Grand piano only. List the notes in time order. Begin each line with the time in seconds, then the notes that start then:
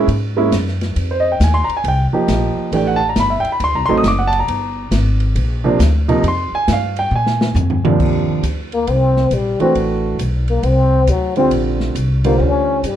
0.37 G#3 A#3 C#4 E4
1.11 C5
1.20 D#5
1.32 G5
1.44 G#5
1.54 C6
1.64 A#5
1.77 G#5
1.88 G5
2.13 F3 A#3 D#4 G4
2.72 E3 A3 D4 G4 G5
2.87 F#5
2.96 A5
3.09 A#5
3.20 B5
3.30 E5
3.40 G5
3.52 B5
3.64 C6
3.75 A#5
3.86 F#3 A3 C4 C6
3.90 D#4
3.97 D#6
4.08 D6
4.19 F#5
4.27 A5
4.39 A#5
5.64 C3 F3 A#3 D4
6.08 C3 F3 A#3 D#4
6.28 C6
6.55 G#5
6.73 F5
6.99 G5
7.16 G#5
7.84 D#2 C3 F3 A#3 D4
9.60 E3 A3 D4 F#4
11.37 D3 G3 C4 F4
12.25 D3 G3 F4 C5